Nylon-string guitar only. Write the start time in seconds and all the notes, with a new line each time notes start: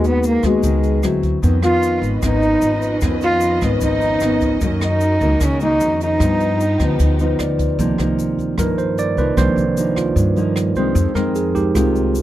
Already playing: D#3 G#3 B3 F#4
0.44 G#3 B3 F#4
0.63 D#3
1.03 F#3 C4 E4
1.42 F2 D#3 B3 C#4
1.63 D#3 B3 C#4
2.24 F2 D#3 B3 C#4
3.02 F2 D#3 B3 C#4
3.63 D#3 B3 C#4
3.82 F2
4.23 D#3 B3 C#4
4.62 F#2 D#3 A#3 C#4
5.23 D#3 A#3 C#4
5.42 C#3
5.62 D#3 A#3 C#4
6.21 G2 F3 B3 D#4
6.80 F3 B3 D#4
7.21 F3 B3 D#4
7.80 C3 F3 A#3 D#4
8.00 F3 A#3 D#4
8.58 G2 F3 A#3 D#4
9.18 F3 A#3 D#4
9.37 C3 F3 A#3 D#4
9.77 F3 A#3 D#4
10.16 G2
10.37 F3 A#3 D#4
10.77 D#3 G#3 C4
10.97 F2
11.16 D#3 G#3 C4
11.75 C3 D#3 G#3 C4